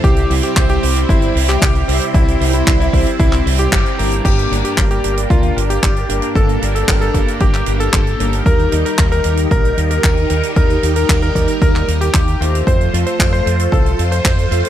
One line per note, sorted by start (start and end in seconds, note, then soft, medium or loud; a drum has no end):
0.00 0.24 C2 loud
0.00 0.27 C3 medium
0.00 0.27 G3 medium
0.00 4.21 G3 medium
0.00 0.27 C4 medium
0.00 4.21 C4 medium
0.00 0.27 E4 medium
0.00 4.21 E4 medium
0.00 0.32 G4 loud
0.00 0.27 C5 loud
0.00 kick loud
0.00 closed hi-hat medium
0.17 closed hi-hat soft
0.30 0.40 C2 loud
0.30 0.80 C3 medium
0.30 0.80 G3 medium
0.30 0.80 C4 medium
0.30 0.80 E4 medium
0.30 0.80 C5 loud
0.30 open hi-hat loud
0.43 0.62 G4 medium
0.43 closed hi-hat medium
0.56 0.77 C2 medium
0.56 kick loud
0.56 clap loud
0.56 closed hi-hat medium
0.69 0.98 G4 loud
0.69 closed hi-hat soft
0.83 1.03 C2 medium
0.83 1.32 C3 medium
0.83 1.32 G3 medium
0.83 1.32 C4 medium
0.83 1.32 E4 medium
0.83 1.32 C5 loud
0.83 open hi-hat loud
0.96 closed hi-hat medium
1.09 1.29 G1 medium
1.09 1.37 E4 loud
1.09 kick loud
1.09 closed hi-hat medium
1.22 closed hi-hat soft
1.35 1.56 C2 medium
1.35 1.56 C3 medium
1.35 1.56 G3 medium
1.35 1.56 C4 medium
1.35 1.56 E4 medium
1.35 1.56 C5 medium
1.35 open hi-hat loud
1.49 2.04 G4 loud
1.49 clap soft
1.49 closed hi-hat medium
1.61 1.82 C2 medium
1.61 kick loud
1.61 clap loud
1.61 closed hi-hat medium
1.75 closed hi-hat soft
1.88 1.98 C2 medium
1.88 2.38 C3 medium
1.88 2.37 G3 medium
1.88 2.37 C4 medium
1.88 2.37 E4 medium
1.88 2.38 C5 loud
1.88 open hi-hat loud
2.01 closed hi-hat medium
2.14 2.35 C2 loud
2.14 2.42 E4 loud
2.14 kick loud
2.14 closed hi-hat medium
2.28 closed hi-hat soft
2.40 2.61 C2 medium
2.40 2.90 C3 medium
2.40 2.90 G3 medium
2.40 2.90 C4 medium
2.40 2.90 E4 medium
2.40 2.90 C5 loud
2.40 open hi-hat loud
2.53 2.72 E4 medium
2.53 closed hi-hat medium
2.67 2.87 C2 loud
2.67 kick loud
2.67 clap loud
2.67 closed hi-hat medium
2.80 3.08 E4 loud
2.80 closed hi-hat soft
2.93 3.03 C2 loud
2.93 3.43 C3 medium
2.93 3.43 G3 medium
2.93 3.43 C4 medium
2.93 3.43 E4 medium
2.93 3.43 C5 loud
2.93 kick medium
2.93 open hi-hat medium
3.07 closed hi-hat medium
3.20 3.40 C2 medium
3.20 3.47 E4 loud
3.20 kick loud
3.20 closed hi-hat medium
3.33 clap soft
3.33 closed hi-hat medium
3.46 3.66 C2 loud
3.46 3.66 C3 medium
3.46 3.66 G3 medium
3.46 3.66 C4 medium
3.46 3.66 E4 medium
3.46 3.66 C5 medium
3.46 open hi-hat loud
3.59 4.14 G4 loud
3.59 closed hi-hat medium
3.72 3.82 G1 medium
3.72 kick loud
3.72 clap loud
3.72 closed hi-hat medium
3.86 closed hi-hat soft
3.98 4.19 G1 medium
3.98 4.48 G2 medium
3.98 4.48 G3 medium
3.98 4.48 A#3 medium
3.98 4.48 D4 medium
3.98 4.48 A#4 loud
3.98 open hi-hat loud
4.12 closed hi-hat medium
4.25 4.45 G1 loud
4.25 8.42 A#3 medium
4.25 8.42 D4 medium
4.25 4.53 G4 loud
4.25 12.63 G4 medium
4.25 kick loud
4.25 closed hi-hat medium
4.25 crash medium
4.39 closed hi-hat soft
4.51 4.61 G1 loud
4.51 5.01 G2 medium
4.51 5.01 G3 medium
4.51 5.01 A#3 medium
4.51 5.01 D4 medium
4.51 5.01 A#4 loud
4.51 closed hi-hat loud
4.65 4.83 G4 medium
4.65 closed hi-hat medium
4.78 4.98 G1 medium
4.78 kick loud
4.78 clap loud
4.78 closed hi-hat medium
4.91 5.19 G4 medium
4.91 closed hi-hat soft
5.04 5.24 G1 medium
5.04 5.53 G2 medium
5.04 5.53 G3 medium
5.04 5.53 A#3 medium
5.04 5.53 D4 medium
5.04 5.53 A#4 loud
5.04 closed hi-hat loud
5.17 closed hi-hat medium
5.30 5.50 D2 medium
5.30 5.58 F4 medium
5.30 kick loud
5.30 closed hi-hat medium
5.43 closed hi-hat soft
5.56 5.77 G1 medium
5.56 5.77 G2 medium
5.56 5.77 G3 medium
5.56 5.77 A#3 medium
5.56 5.77 D4 medium
5.56 5.77 A#4 medium
5.56 closed hi-hat medium
5.70 6.25 G4 medium
5.70 closed hi-hat medium
5.82 6.03 G1 medium
5.82 kick loud
5.82 clap loud
5.82 closed hi-hat medium
5.96 closed hi-hat soft
6.09 6.19 G1 medium
6.09 6.59 G2 medium
6.09 6.59 G3 medium
6.09 6.59 A#3 medium
6.09 6.59 D4 medium
6.09 6.59 A#4 loud
6.09 closed hi-hat loud
6.22 closed hi-hat medium
6.36 6.56 G1 loud
6.36 6.63 A4 loud
6.36 kick loud
6.36 closed hi-hat medium
6.49 closed hi-hat soft
6.62 6.82 G1 medium
6.62 7.11 G2 medium
6.62 7.11 G3 medium
6.62 7.11 A#3 medium
6.62 7.11 D4 medium
6.62 7.11 A#4 loud
6.62 closed hi-hat medium
6.75 6.94 A4 medium
6.75 closed hi-hat medium
6.88 7.08 G1 medium
6.88 kick loud
6.88 clap loud
6.88 closed hi-hat medium
7.01 7.29 A4 medium
7.01 closed hi-hat soft
7.14 7.24 G1 medium
7.14 7.64 G2 medium
7.14 7.64 G3 medium
7.14 7.64 A#3 medium
7.14 7.64 D4 medium
7.14 7.64 A#4 loud
7.14 kick medium
7.14 closed hi-hat loud
7.28 closed hi-hat medium
7.40 7.61 G1 medium
7.40 7.69 G4 medium
7.40 kick loud
7.40 closed hi-hat medium
7.54 clap soft
7.54 closed hi-hat soft
7.66 7.87 G1 medium
7.66 7.87 G2 medium
7.66 7.87 G3 medium
7.66 7.87 A#3 medium
7.66 7.87 D4 medium
7.66 7.87 A#4 medium
7.66 closed hi-hat loud
7.80 8.35 A4 medium
7.80 closed hi-hat medium
7.93 8.13 G1 medium
7.93 kick loud
7.93 clap loud
8.07 closed hi-hat soft
8.19 8.40 G1 medium
8.19 8.69 G3 medium
8.19 8.69 A#3 medium
8.19 8.69 D#4 medium
8.19 8.69 A#4 loud
8.19 closed hi-hat medium
8.33 closed hi-hat medium
8.46 8.66 D#2 loud
8.46 12.63 D#3 medium
8.46 12.63 D#4 medium
8.46 8.74 A#4 loud
8.46 12.63 A#4 medium
8.46 kick loud
8.46 closed hi-hat medium
8.59 closed hi-hat soft
8.72 8.82 D#2 loud
8.72 9.22 G3 medium
8.72 9.22 A#3 medium
8.72 9.22 D#4 medium
8.72 9.22 A#4 loud
8.72 closed hi-hat loud
8.85 9.04 A#4 medium
8.85 closed hi-hat medium
8.98 9.19 D#2 medium
8.98 kick loud
8.98 clap loud
8.98 closed hi-hat medium
9.12 9.40 A#4 loud
9.12 closed hi-hat soft
9.24 9.45 D#2 medium
9.24 9.74 G3 medium
9.24 9.74 A#3 medium
9.24 9.74 D#4 medium
9.24 9.74 A#4 loud
9.24 closed hi-hat loud
9.37 closed hi-hat medium
9.51 9.71 A#1 medium
9.51 9.79 A#4 medium
9.51 kick loud
9.51 closed hi-hat medium
9.65 closed hi-hat soft
9.77 9.98 D#2 medium
9.77 9.98 G3 medium
9.77 9.98 A#3 medium
9.77 9.98 D#4 medium
9.77 9.98 A#4 medium
9.77 closed hi-hat medium
9.91 10.46 A#4 medium
9.91 closed hi-hat medium
10.04 10.24 D#2 medium
10.04 kick loud
10.04 clap loud
10.17 closed hi-hat soft
10.30 10.40 D#2 medium
10.30 10.80 G3 medium
10.30 10.79 A#3 medium
10.30 10.80 D#4 medium
10.30 10.80 A#4 loud
10.30 closed hi-hat medium
10.43 closed hi-hat medium
10.56 10.77 D#2 medium
10.56 10.84 A#4 medium
10.56 kick loud
10.56 closed hi-hat medium
10.70 closed hi-hat soft
10.83 11.03 D#2 medium
10.83 11.32 G3 medium
10.83 11.32 A#3 medium
10.83 11.32 D#4 medium
10.83 11.32 A#4 loud
10.83 closed hi-hat loud
10.96 11.15 A#4 medium
10.96 closed hi-hat medium
11.09 11.29 D#2 medium
11.09 kick loud
11.09 clap loud
11.09 closed hi-hat medium
11.22 11.50 A#4 medium
11.22 closed hi-hat soft
11.35 11.45 D#2 medium
11.35 11.85 G3 medium
11.35 11.85 A#3 medium
11.35 11.85 D#4 medium
11.35 11.85 A#4 loud
11.35 kick medium
11.35 closed hi-hat medium
11.48 closed hi-hat medium
11.62 11.82 D#2 medium
11.62 11.90 A#4 medium
11.62 kick loud
11.62 closed hi-hat medium
11.75 clap soft
11.75 closed hi-hat soft
11.88 12.08 D#2 medium
11.88 12.08 G3 medium
11.88 12.08 A#3 medium
11.88 12.08 D#4 medium
11.88 12.08 A#4 medium
11.88 closed hi-hat loud
12.01 12.56 G4 medium
12.01 closed hi-hat medium
12.14 12.34 D#2 medium
12.14 kick loud
12.14 clap loud
12.14 closed hi-hat medium
12.28 closed hi-hat soft
12.41 12.61 D#2 medium
12.41 12.90 A3 medium
12.41 12.90 C4 medium
12.41 12.90 F4 medium
12.41 12.90 C5 loud
12.41 closed hi-hat loud
12.55 closed hi-hat medium
12.67 12.87 F2 loud
12.67 14.69 F3 medium
12.67 14.69 F4 medium
12.67 14.69 A4 medium
12.67 12.95 C5 medium
12.67 14.69 C5 medium
12.67 kick loud
12.67 closed hi-hat medium
12.81 closed hi-hat soft
12.93 13.03 F2 loud
12.93 13.43 A3 medium
12.93 13.43 C4 medium
12.93 13.43 F4 medium
12.93 13.43 C5 loud
12.93 closed hi-hat medium
13.06 13.25 C5 medium
13.06 closed hi-hat medium
13.20 13.40 F2 medium
13.20 kick loud
13.20 clap loud
13.20 closed hi-hat medium
13.33 13.61 C5 medium
13.33 closed hi-hat soft
13.46 13.66 F2 medium
13.46 13.95 A3 medium
13.46 13.95 C4 medium
13.46 13.95 F4 medium
13.46 13.95 C5 medium
13.46 closed hi-hat medium
13.59 closed hi-hat medium
13.72 13.92 C2 medium
13.72 14.00 A4 medium
13.72 kick loud
13.72 closed hi-hat medium
13.86 closed hi-hat soft
13.99 14.19 F2 medium
13.99 14.19 A3 medium
13.99 14.19 C4 medium
13.99 14.19 F4 medium
13.99 14.19 C5 medium
13.99 closed hi-hat medium
14.12 14.67 C5 medium
14.12 closed hi-hat medium
14.25 14.45 F2 medium
14.25 kick loud
14.25 clap loud
14.39 closed hi-hat soft
14.51 14.61 F2 medium
14.51 14.69 A3 medium
14.51 14.69 C4 medium
14.51 14.69 F4 medium
14.51 14.69 C5 loud
14.51 closed hi-hat medium
14.65 closed hi-hat medium